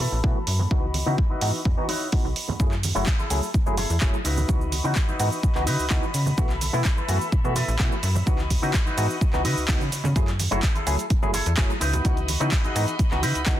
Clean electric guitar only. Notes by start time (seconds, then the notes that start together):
0.00 E4 A4 B4
0.35 muted clean electric guitar stroke
0.47 muted clean electric guitar stroke
0.59 muted clean electric guitar stroke
1.06 D#4 E4 F#4 B4
1.30 D#4 E4 F#4 B4
1.88 D#4 E4 F#4 C#5
2.24 muted clean electric guitar stroke
2.35 muted clean electric guitar stroke
2.48 muted clean electric guitar stroke
2.95 E4 G#4 A4
3.19 E4 G#4 A4
3.77 E4 G#4 A4
4.13 muted clean electric guitar stroke
4.24 D#4 E4 F#4 B4
4.84 D#4 E4 F#4 C#5
5.08 D#4 E4 F#4 B4
5.66 D#4 E4 F#4 B4
6.02 muted clean electric guitar stroke
6.13 muted clean electric guitar stroke
6.26 muted clean electric guitar stroke
6.73 E4 A4 B4
6.97 E4 A4 B4
7.55 E4 A4 B4
7.91 muted clean electric guitar stroke
8.03 muted clean electric guitar stroke
8.15 muted clean electric guitar stroke
8.62 D#4 E4 F#4 B4
8.86 D#4 E4 F#4 B4
9.44 D#4 E4 F#4 B4
9.80 muted clean electric guitar stroke
9.92 muted clean electric guitar stroke
10.04 muted clean electric guitar stroke
10.51 E4 G#4 A4
10.75 E4 G#4 A4
11.33 E4 G#4 A4
11.69 muted clean electric guitar stroke
11.80 D#4 E4 F#4 B4
12.40 D#4 E4 F#4 B4
12.64 D#4 E4 F#4 G#4
13.22 D#4 E4 F#4 B4